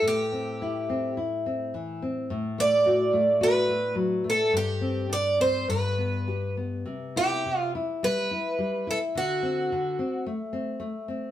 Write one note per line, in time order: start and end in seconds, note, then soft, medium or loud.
0.02 2.26 A2 medium
0.08 1.16 G4 medium
0.32 0.61 C4 medium
0.62 0.90 E4 medium
0.89 1.17 C4 medium
1.17 1.45 E4 medium
1.46 1.74 C4 soft
1.74 2.02 E3 medium
2.02 2.30 C4 medium
2.30 4.49 A2 medium
2.58 2.85 A3 medium
2.58 3.43 D5 loud
2.86 3.13 F#4 medium
3.13 3.40 A3 medium
3.41 3.68 F#4 medium
3.41 3.94 B4 medium
3.69 3.96 A3 medium
3.95 4.23 F#3 soft
4.24 4.52 A3 soft
4.30 4.56 A4 medium
4.52 5.64 G2 medium
4.57 5.13 G4 medium
4.81 5.09 C4 medium
5.09 5.38 D4 medium
5.09 5.41 D5 medium
5.40 5.68 C4 medium
5.40 5.69 C5 medium
5.68 6.83 G2 medium
5.68 6.54 B4 medium
5.98 6.27 B3 soft
6.28 6.57 G4 medium
6.57 6.86 B3 soft
6.86 7.45 C3 medium
7.16 7.44 E4 medium
7.16 7.58 G4 medium
7.46 7.74 C3 medium
7.58 7.71 F4 medium
7.75 8.03 E4 medium
8.03 8.31 G3 medium
8.03 8.90 B4 medium
8.31 8.59 E4 soft
8.59 8.86 G3 medium
8.87 9.15 E4 medium
8.87 8.98 A4 medium
9.15 9.71 D3 medium
9.15 10.24 F#4 medium
9.43 9.70 C4 medium
9.72 9.99 D3 medium
9.99 10.26 C4 medium
10.26 10.53 A3 medium
10.53 10.80 C4 medium
10.80 11.07 A3 medium
11.08 11.31 C4 soft